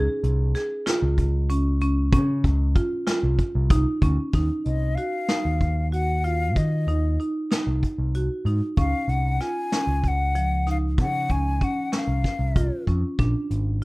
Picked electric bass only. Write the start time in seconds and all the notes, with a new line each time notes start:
0.24 C2
1.02 C#2
2.13 C#3
2.44 C#2
3.23 C2
3.55 C2
4.02 D2
4.34 D#2
4.66 C2
5.45 D#2
6.56 D#3
6.87 D#2
7.67 C2
7.98 C2
8.45 G#2
8.77 C#2
9.08 C2
9.87 C#2
10.98 C#3
11.30 C#2
12.08 C2
12.39 C2
12.87 F2
13.19 A#1
13.51 G#1